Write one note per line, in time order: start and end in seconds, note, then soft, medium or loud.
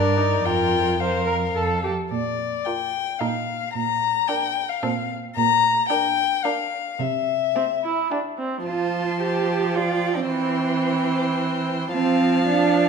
0.00 0.41 G2 medium
0.00 0.19 D4 soft
0.00 0.44 A#4 soft
0.00 0.46 D5 medium
0.17 0.46 D#4 soft
0.44 1.54 F2 soft
0.44 1.00 F4 soft
0.44 0.99 A#4 soft
0.44 1.01 G5 medium
1.00 1.58 A#4 soft
1.00 1.26 C5 soft
1.00 1.83 F5 soft
1.26 1.34 A#4 soft
1.55 1.90 F2 soft
1.55 1.83 A4 soft
1.55 1.91 A4 soft
1.84 1.92 G4 soft
2.11 2.54 A#2 soft
2.11 2.66 D5 medium
2.64 3.07 F4 soft
2.64 3.07 A#4 soft
2.64 3.21 G5 medium
3.19 3.64 A#2 soft
3.19 3.61 D#4 soft
3.19 3.61 A4 soft
3.19 3.73 F5 medium
3.73 4.18 A#2 medium
3.73 4.29 A#5 medium
4.28 4.69 D4 soft
4.28 4.70 A#4 soft
4.28 4.71 G5 medium
4.69 5.10 F5 medium
4.83 5.26 A#2 medium
4.83 5.23 C4 medium
4.83 5.23 A4 medium
5.36 5.79 A#2 medium
5.36 5.86 A#5 medium
5.89 6.30 D4 medium
5.89 6.31 A#4 medium
5.89 6.45 G5 medium
6.44 6.85 D4 medium
6.44 6.85 A#4 medium
6.44 7.00 F5 medium
6.99 7.43 C3 soft
6.99 8.11 E5 medium
7.56 7.64 C4 soft
7.56 7.97 G4 soft
7.84 8.11 E4 soft
8.11 8.19 D4 soft
8.11 8.53 G4 soft
8.39 8.65 C4 soft
8.66 10.26 F3 soft
8.66 9.18 F4 medium
8.66 9.77 C5 soft
8.66 9.77 A5 soft
9.21 9.77 G4 medium
9.75 10.17 F4 medium
9.75 10.28 D5 soft
9.75 10.28 G5 soft
10.16 11.65 C4 medium
10.29 11.89 E3 soft
10.29 11.89 C5 soft
10.29 11.89 G5 soft
11.92 12.89 F3 medium
11.92 12.43 C4 medium
11.92 12.89 F5 soft
11.92 12.89 A5 medium
12.47 12.89 D4 medium